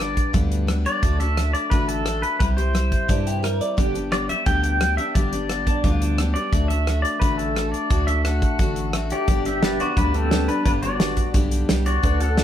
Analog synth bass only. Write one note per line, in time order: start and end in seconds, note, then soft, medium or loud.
0.00 0.17 G1 medium
0.34 0.86 D2 medium
1.03 1.55 D2 medium
1.71 2.23 A1 medium
2.40 2.92 C2 medium
3.09 3.61 G2 medium
3.78 4.30 G1 medium
4.46 4.98 D2 medium
5.15 5.67 G1 medium
5.84 6.36 D2 medium
6.52 7.05 D2 medium
7.22 7.74 A1 medium
7.90 8.42 D2 medium
8.59 9.11 A1 medium
9.28 9.80 G1 medium
9.97 10.49 D2 medium
10.66 11.18 G1 loud
11.34 11.64 B1 medium
11.70 11.99 C2 medium
12.03 12.44 D2 loud